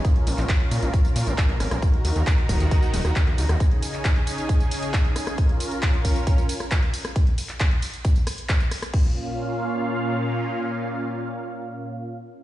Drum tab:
CC |----------------|----------------|----------------|----------------|
RD |x-x-x-x-x-x-x-x-|x-x-x-x-x-x-x-x-|x-x-x-x-x-x-x-x-|x-x-x-x-x-x-x-x-|
HH |xxoxxxoxxxoxxxox|xxoxxxoxxxoxxxox|xxoxxxoxxxoxxxox|xxoxxxoxxxoxxxox|
TB |x-xxx-xxxxxxx-xx|x-xxx-xxxxxxx-xx|x-xxx-xxxxxxx-xx|x-xxx-xxxxxxx-xx|
CP |---xx-------x---|----x-------x---|---xx-------x---|----x-------x---|
SD |--------------rr|-----------r---r|--------------rr|-----------r---r|
BD |o---o---o---o---|o---o-o-o---o---|o---o---o---o---|o---o-o-o---o---|

CC |----------------|x---------------|----------------|
RD |x-x-x-x-x-x-x-x-|----------------|----------------|
HH |xxoxxxoxxxoxxxox|----------------|----------------|
TB |x-xxx-xxxxxxxxxx|----------------|----------------|
CP |---xx-------x---|----------------|----------------|
SD |----------r---rr|----------------|----------------|
BD |o---o---o---o---|o---------------|----------------|